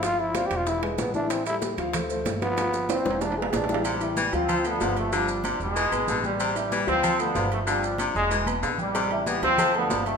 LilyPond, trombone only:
\new Staff \with { instrumentName = "Trombone" } { \time 4/4 \key a \minor \tempo 4 = 188 f'8 e'8 \tuplet 3/2 { f'8 g'8 f'8 } e'8 gis8 b8 d'8 | c'8 e'8 r2 r8 b8~ | b4 c'4 d'8 b8 d'8. r16 | r1 |
r1 | r1 | r1 | r1 | }